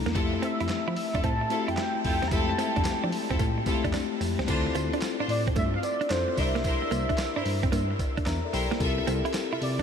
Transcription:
Already playing: A3 A#3 D4 E4 A#5
0.06 E2 A#3, snare, closed hi-hat
0.15 F2 A3 C4 E4 F4 G4 A4, kick, closed hi-hat, cowbell
0.34 muted clean electric guitar stroke
0.42 C4 E5, closed hi-hat, cowbell
0.60 F2 E4, closed hi-hat
0.69 F3 E5, snare, clap, closed hi-hat, cowbell
0.88 F3 E4
0.96 muted clean electric guitar stroke, open hi-hat
1.14 F2 D4 E4 F4 A4, kick, closed hi-hat
1.24 A2 C4 A5, kick, closed hi-hat, cowbell
1.41 muted clean electric guitar stroke
1.50 A3 C4 E4 F4 F#4 A4, closed hi-hat, cowbell
1.58 G4 A5
1.68 F2 E4 G5, closed hi-hat
1.77 E4, snare, clap, closed hi-hat, cowbell
1.95 muted clean electric guitar stroke
2.04 F2 E4 F4 A4 G5, kick, open hi-hat
2.22 E2 C4, snare, closed hi-hat
2.28 F2 G#3 E4 F4 A#5, kick, closed hi-hat, tambourine
2.32 C4 E4 G4 A4 A5, cowbell
2.38 A3
2.49 muted clean electric guitar stroke
2.58 C4 E4 F4 A4, closed hi-hat, tambourine, cowbell
2.76 F2 D4, kick, closed hi-hat
2.85 F3, snare, clap, closed hi-hat, tambourine, cowbell
3.04 F3 D4
3.12 muted clean electric guitar stroke, open hi-hat
3.30 F2 C4 E4 F4 A4, kick, closed hi-hat
3.39 A2 A3, kick, closed hi-hat, tambourine, cowbell
3.58 muted clean electric guitar stroke
3.66 A3 C4 E4 F4 G4 A4, kick, closed hi-hat, tambourine, cowbell
3.84 F2 D4, kick, closed hi-hat
3.93 D4, snare, clap, closed hi-hat, tambourine, cowbell
4.21 F2, muted clean electric guitar stroke, open hi-hat, tambourine
4.39 C#2 C4, snare, closed hi-hat
4.47 D2 C4 D4 E4 F4 A4 C5, kick, closed hi-hat, crash, tambourine, cowbell
4.67 muted clean electric guitar stroke
4.75 D2 A3, closed hi-hat, tambourine, cowbell
4.93 D4, closed hi-hat
5.02 snare, clap, closed hi-hat, tambourine, cowbell
5.19 A2 D4 F4 C5
5.29 A2 D5, muted clean electric guitar stroke, open hi-hat
5.47 C4, kick, closed hi-hat
5.56 G2 A3 E5, kick, closed hi-hat, tambourine, cowbell
5.74 F5, muted clean electric guitar stroke
5.83 D5, closed hi-hat, tambourine, cowbell
6.01 D4, closed hi-hat
6.10 F2 C4 D4 E4 F4 A4 C5, snare, clap, closed hi-hat, tambourine, cowbell
6.28 muted clean electric guitar stroke
6.37 C2 D4 E4 G4 A#4 C5 E5, kick, open hi-hat, tambourine
6.55 A#3, snare, closed hi-hat
6.64 E4 A#4 C5, kick, closed hi-hat, tambourine, cowbell
6.82 muted clean electric guitar stroke
6.91 C2 A#3, closed hi-hat, tambourine, cowbell
7.09 D4, kick, closed hi-hat
7.18 snare, clap, closed hi-hat, tambourine, cowbell
7.36 G2 D4 E4 A#4 C5
7.45 G2, muted clean electric guitar stroke, open hi-hat
7.63 C4, kick, closed hi-hat
7.72 G2 A#3, closed hi-hat, tambourine, cowbell
7.91 muted clean electric guitar stroke
7.99 kick, closed hi-hat, tambourine, cowbell
8.17 D4, kick, closed hi-hat
8.26 E2 D4 A#4 E5 A#5, snare, clap, closed hi-hat, tambourine, cowbell
8.45 A4 D5
8.53 B1 E4 G4 A#4 C5 G5, muted clean electric guitar stroke, open hi-hat, tambourine
8.71 A#3 E4, snare, closed hi-hat
8.80 C2 C4 E4 F4 G4 A4 E5, kick, closed hi-hat, tambourine, cowbell
8.98 muted clean electric guitar stroke
9.07 C2 C4, closed hi-hat, tambourine, cowbell
9.25 E4, closed hi-hat
9.34 snare, clap, closed hi-hat, tambourine, cowbell
9.52 C3 E4 F4 A4 E5
9.61 C3 D5, muted clean electric guitar stroke, open hi-hat
9.79 D4, kick, closed hi-hat

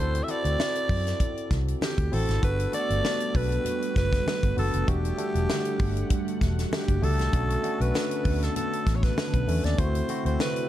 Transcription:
Already playing: D2 C4 E4 F#4 A4
0.00 C5
0.15 closed hi-hat
0.24 E5
0.28 C4 E4 F#4 A4 D5, closed hi-hat, muted conga
0.45 D2, closed hi-hat
0.59 snare, high conga
0.75 closed hi-hat
0.89 F#2, kick, open hi-hat
1.07 snare, closed hi-hat
1.20 kick, closed hi-hat, muted conga, low conga
1.37 closed hi-hat
1.51 C2, kick, snare, closed hi-hat, muted conga
1.68 closed hi-hat
1.81 G4, snare, high conga
1.98 D2, kick, closed hi-hat
2.12 A1 C4 E4 F#4 A4 C5, open hi-hat, high conga
2.29 G#1, snare, closed hi-hat, high conga
2.42 G1 G3 B3 D4 F#4 A4 B4, kick, closed hi-hat, muted conga
2.60 closed hi-hat
2.72 A3 D4 F#4 A4 D5, closed hi-hat, muted conga
2.79 B3
2.90 G1, closed hi-hat
3.04 snare, high conga
3.20 closed hi-hat
3.34 B1 B4, kick, open hi-hat
3.52 closed hi-hat
3.65 closed hi-hat, low conga
3.82 closed hi-hat
3.96 F#1 B4, kick, snare, closed hi-hat, muted conga, low conga
4.13 kick, snare, closed hi-hat
4.27 snare, high conga
4.43 G1, kick, closed hi-hat
4.57 F#1 B3 D4 F#4 A4 B4, open hi-hat, high conga
4.73 F1, closed hi-hat, high conga
4.87 E1 D3 G3 A3 D4 F#4 G4 F#5, kick, closed hi-hat, muted conga
5.05 closed hi-hat
5.17 A3 D4 A4 F#5, closed hi-hat, muted conga
5.35 E1, closed hi-hat
5.49 snare, high conga
5.65 closed hi-hat
5.79 G1, kick, open hi-hat
5.97 closed hi-hat
6.10 kick, closed hi-hat, muted conga, low conga
6.28 closed hi-hat
6.41 E1, kick, snare, closed hi-hat, muted conga
6.59 snare, closed hi-hat
6.72 G4, snare, high conga
6.88 F#1, kick, closed hi-hat
7.02 C#2 A3 D4 F#4 G4 A4, open hi-hat, high conga
7.19 C2, snare, closed hi-hat, high conga
7.32 B1 A3 B3 C#4 D4 F#4 A4, kick, closed hi-hat, muted conga
7.50 closed hi-hat
7.63 A3 C#4 D4 F#4, closed hi-hat, muted conga
7.80 B1 B4, closed hi-hat
7.94 snare, high conga
8.11 closed hi-hat
8.25 D2, kick, open hi-hat
8.42 A4, snare, closed hi-hat
8.56 A4, closed hi-hat, muted conga, low conga
8.73 closed hi-hat
8.87 A1, kick, snare, closed hi-hat, muted conga, low conga
8.96 C#5
9.03 B4, kick, snare, closed hi-hat
9.17 snare, high conga
9.34 B1, kick, closed hi-hat
9.47 E2 A3 C#4 D4 A4, open hi-hat, high conga
9.64 D#2 D5, snare, closed hi-hat, high conga
9.77 D2 C3 A3 C4 E4 F#4 C5, kick, closed hi-hat, muted conga
9.95 closed hi-hat
10.08 A3 C4 E4 F#4, closed hi-hat, muted conga
10.25 D2 C5, closed hi-hat
10.39 B4, snare, high conga
10.56 closed hi-hat

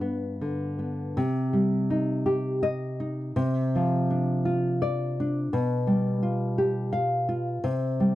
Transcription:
Already playing: G2 D4
0.01 B3
0.41 D3
0.79 B3
1.17 C3
1.53 G3
1.90 D#4
2.26 G4
2.63 D#5
3.00 D#4
3.36 C3
3.75 F3
4.10 D4
4.45 F4
4.82 D5
5.20 D4
5.53 B2
5.87 G3
6.23 F4
6.58 G4
6.93 F5
7.29 F4
7.64 C3
8.00 G3

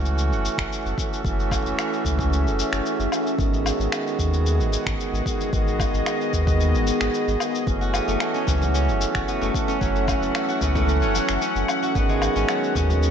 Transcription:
Already playing: C#2 E3 A3 C#4 F#4 A4 E5 F#5
0.05 shaker
0.18 shaker
0.32 F#1, shaker
0.45 shaker
0.58 F#1, finger snap, kick, shaker
0.72 shaker
0.86 F#1, shaker
0.97 E3 A3 C#4 F#4, kick, shaker
1.13 shaker
1.23 F#1 E3 A3 C#4 G#4, kick, shaker
1.27 F#4
1.40 shaker
1.51 kick, low woodblock, shaker
1.66 F#1, shaker
1.79 finger snap, low woodblock, shaker
1.93 shaker
2.05 C#2, kick, shaker
2.19 kick, shaker
2.33 shaker
2.46 F#1, shaker
2.59 shaker
2.73 F#1, finger snap, shaker
2.86 shaker
2.99 F#1, shaker
3.11 E3 A3 C#4 F#4, low woodblock, shaker
3.27 shaker
3.36 G#1 D#3 G#3 B3 G#4 D#5 F#5, kick, shaker
3.40 F#4
3.54 shaker
3.66 low woodblock, shaker
3.80 G#1, shaker
3.92 finger snap, low woodblock, shaker
4.07 shaker
4.19 D#2, kick, shaker
4.34 shaker
4.46 shaker
4.60 G#1, shaker
4.73 shaker
4.86 G#1, finger snap, kick, shaker
5.00 shaker
5.13 G#1, shaker
5.25 D#3 G#3 B3 F#4, kick, shaker
5.41 shaker
5.51 G#1 D#3 G#3 B3 G#4, kick, shaker
5.55 F#4
5.68 shaker
5.80 kick, low woodblock, shaker
5.93 G#1, shaker
6.06 finger snap, low woodblock, shaker
6.21 shaker
6.33 D#2, kick, shaker
6.47 kick, shaker
6.61 shaker
6.74 G#1, shaker
6.87 shaker
7.01 G#1, finger snap, shaker
7.14 shaker
7.28 G#1, shaker
7.39 D#3 G#3 B3 F#4, low woodblock, shaker
7.55 shaker
7.65 F#1 E3 A3 C#4 A4 E5 F#5, kick, shaker
7.69 F#4
7.81 F#4, shaker
7.94 B3, low woodblock, shaker
8.08 F#1 A3, shaker
8.20 finger snap, low woodblock, shaker
8.34 C#4, shaker
8.47 C#2 F#3, kick, frame drum, shaker
8.62 frame drum, shaker
8.74 C#4, shaker
8.88 F#1, shaker
9.01 shaker
9.15 F#1 F#4, finger snap, kick, shaker
9.28 B3, shaker
9.42 F#1 A3, shaker
9.54 E3 A3 C#4 F#4, kick, shaker
9.68 C#4, shaker
9.79 F#1 E3 F#3 A3 C#4, kick, shaker
9.83 F#4
9.96 shaker
10.07 C#4, kick, low woodblock, shaker
10.22 F#1, shaker
10.35 finger snap, low woodblock, shaker
10.49 F#4, shaker
10.61 C#2 B3, kick, frame drum, shaker
10.75 A3, kick, frame drum, shaker
10.89 shaker
11.02 F#1 C#4, shaker
11.15 F#3, shaker
11.29 F#1, finger snap, shaker
11.41 C#4, shaker
11.56 F#1, shaker
11.68 E3 A3 C#4 F#4, low woodblock, shaker
11.82 F#4, shaker
11.93 G#1 D#3 G#3 B3 G#4 D#5, kick, shaker
11.97 F#4
12.09 G#3, shaker
12.22 low woodblock, shaker
12.36 G#1 C#4, shaker
12.49 F#3, finger snap, low woodblock, shaker
12.64 shaker
12.75 D#2 C#4, kick, frame drum, shaker
12.90 frame drum, shaker
13.03 shaker

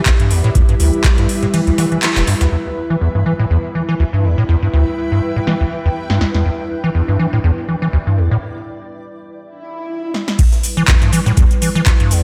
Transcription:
Already playing: G3 E4 G4 B4 E5 G5
0.06 D2, kick, snare, clap, closed hi-hat, shaker
0.20 G2, closed hi-hat
0.31 E2, open hi-hat, shaker
0.44 A2, snare, closed hi-hat
0.55 E2, kick, closed hi-hat, shaker
0.69 G2, closed hi-hat
0.80 D2, open hi-hat, shaker
0.93 closed hi-hat
1.04 kick, snare, clap, closed hi-hat, shaker
1.18 G2, snare, closed hi-hat
1.29 open hi-hat, shaker
1.43 A2, snare, closed hi-hat
1.54 E3, closed hi-hat, open hi-hat
1.67 D2, closed hi-hat
1.78 E3, snare, open hi-hat, shaker
1.92 E3, closed hi-hat
2.03 snare, clap, closed hi-hat, shaker
2.16 E1, snare, clap, closed hi-hat, shaker
2.27 G2, snare, open hi-hat, shaker
2.41 D2, snare, closed hi-hat, shaker
2.52 E2 G3 E4 B4
2.66 snare
2.90 E3
3.01 E2 B4
3.15 G2, snare
3.23 E3 E5
3.39 A2, snare
3.47 E2 G5
3.75 E3, shaker
3.89 E3, snare
4.00 D2, shaker
4.13 G2
4.24 E2
4.38 A2, snare
4.49 E2, shaker
4.62 G2
4.73 D2
4.98 shaker
5.12 G2, snare
5.36 A2, snare
5.47 E3, snare, open hi-hat
5.61 D2
5.72 shaker
5.85 E2
5.96 shaker
6.10 G2, snare
6.21 E2, snare
6.34 E2, snare
6.46 E2 D4
6.59 snare
6.70 shaker
6.84 E3
6.95 E2, shaker
7.08 G2, snare
7.15 D5
7.19 E3
7.33 A2, snare
7.44 E2, shaker
7.68 E3, shaker
7.82 E3, snare
7.93 D2, shaker
8.07 G2
8.18 E2, shaker
8.31 A2, snare
9.41 swell
10.14 snare
10.28 snare
10.39 E2 G3 E4 B4, kick, closed hi-hat, crash, shaker
10.52 snare, closed hi-hat, shaker
10.63 open hi-hat, shaker
10.77 E3, closed hi-hat, shaker
10.88 E2, kick, snare, clap, closed hi-hat, shaker
11.02 G2, snare, closed hi-hat, shaker
11.13 E3, open hi-hat, shaker
11.26 A2, snare, closed hi-hat, shaker
11.37 E2, kick, closed hi-hat, shaker
11.51 closed hi-hat, shaker
11.62 E3, open hi-hat, shaker
11.75 E3, snare, closed hi-hat, shaker
11.86 D2, kick, snare, clap, closed hi-hat, shaker
12.00 G2, closed hi-hat
12.11 E2, open hi-hat, shaker

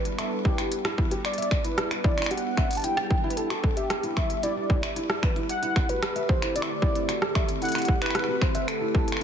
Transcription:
Already playing: G3 B3 D4 E4 B4
0.05 closed hi-hat
0.18 A4 E5, finger snap, closed hi-hat
0.45 E4 G4, kick
0.58 E4, finger snap, closed hi-hat
0.72 closed hi-hat
0.85 E4, finger snap, cross-stick
0.98 E4, kick
1.11 G4, closed hi-hat
1.25 G4 D5, finger snap, closed hi-hat
1.34 closed hi-hat
1.38 E5, closed hi-hat
1.42 closed hi-hat
1.51 finger snap, kick
1.64 E4 B4, closed hi-hat
1.78 E4, cross-stick, closed hi-hat
1.91 finger snap, closed hi-hat
2.04 E4 D5, kick
2.18 E4, finger snap, closed hi-hat
2.22 finger snap, closed hi-hat
2.26 finger snap
2.31 G4 F#5, closed hi-hat
2.37 closed hi-hat
2.57 E5, finger snap, kick
2.71 closed hi-hat
2.73 closed hi-hat
2.75 A5, closed hi-hat
2.77 closed hi-hat
2.80 closed hi-hat
2.82 G5, closed hi-hat
2.84 E4, closed hi-hat
2.97 cross-stick
3.11 kick
3.24 E4
3.30 B4, closed hi-hat
3.37 E4 A4, closed hi-hat
3.50 G4, finger snap, closed hi-hat
3.64 kick
3.77 G4 E5, closed hi-hat
3.90 finger snap, cross-stick, closed hi-hat
4.03 E4, closed hi-hat
4.17 E5, finger snap, kick
4.30 closed hi-hat
4.43 E4 D5, closed hi-hat
4.56 E4
4.70 E4, kick
4.83 E5, finger snap, closed hi-hat
4.96 E4, closed hi-hat
5.10 cross-stick, closed hi-hat
5.23 B4, finger snap, kick
5.36 E4, closed hi-hat
5.49 D3 A3 C4 A4 F#5, closed hi-hat
5.63 E4, closed hi-hat
5.76 E4, finger snap, kick
5.89 F#4 B4, closed hi-hat
6.03 finger snap, cross-stick, closed hi-hat
6.16 E5, closed hi-hat
6.29 C5, kick
6.42 E4, finger snap, closed hi-hat
6.56 E4 D5, closed hi-hat
6.62 E5, finger snap
6.70 D5
6.82 E4, kick
6.95 E4, closed hi-hat
7.09 F#4, finger snap, closed hi-hat
7.22 cross-stick
7.35 E5, finger snap, kick
7.49 closed hi-hat
7.62 E4 B4 F#5, closed hi-hat
7.65 closed hi-hat
7.69 closed hi-hat
7.72 E4, finger snap, closed hi-hat
7.75 closed hi-hat
7.78 closed hi-hat
7.82 closed hi-hat
7.85 kick, closed hi-hat
8.02 E4 B4, finger snap, closed hi-hat
8.06 finger snap
8.10 finger snap
8.15 E4, finger snap, cross-stick, closed hi-hat
8.19 finger snap
8.24 finger snap
8.28 F#4
8.41 C5, finger snap, kick
8.55 E5, closed hi-hat
8.68 A4, finger snap, closed hi-hat
8.81 E4
8.95 E4, kick
9.08 closed hi-hat
9.12 finger snap
9.17 finger snap

